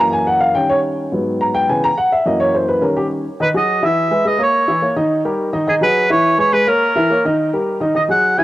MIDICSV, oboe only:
0, 0, Header, 1, 2, 480
1, 0, Start_track
1, 0, Key_signature, 5, "minor"
1, 0, Tempo, 284765
1, 1891, Time_signature, 4, 2, 24, 8
1, 14223, End_track
2, 0, Start_track
2, 0, Title_t, "Oboe"
2, 0, Program_c, 0, 68
2, 5764, Note_on_c, 0, 71, 93
2, 5865, Note_off_c, 0, 71, 0
2, 6016, Note_on_c, 0, 75, 102
2, 6441, Note_off_c, 0, 75, 0
2, 6491, Note_on_c, 0, 76, 110
2, 7142, Note_off_c, 0, 76, 0
2, 7202, Note_on_c, 0, 75, 101
2, 7411, Note_off_c, 0, 75, 0
2, 7461, Note_on_c, 0, 73, 101
2, 8330, Note_off_c, 0, 73, 0
2, 9591, Note_on_c, 0, 68, 91
2, 9694, Note_off_c, 0, 68, 0
2, 9826, Note_on_c, 0, 71, 101
2, 10265, Note_off_c, 0, 71, 0
2, 10303, Note_on_c, 0, 73, 117
2, 10743, Note_off_c, 0, 73, 0
2, 10782, Note_on_c, 0, 73, 111
2, 11015, Note_on_c, 0, 71, 105
2, 11041, Note_off_c, 0, 73, 0
2, 11268, Note_on_c, 0, 70, 107
2, 11293, Note_off_c, 0, 71, 0
2, 12219, Note_off_c, 0, 70, 0
2, 13416, Note_on_c, 0, 75, 98
2, 13523, Note_off_c, 0, 75, 0
2, 13667, Note_on_c, 0, 78, 93
2, 14135, Note_on_c, 0, 80, 100
2, 14161, Note_off_c, 0, 78, 0
2, 14223, Note_off_c, 0, 80, 0
2, 14223, End_track
0, 0, End_of_file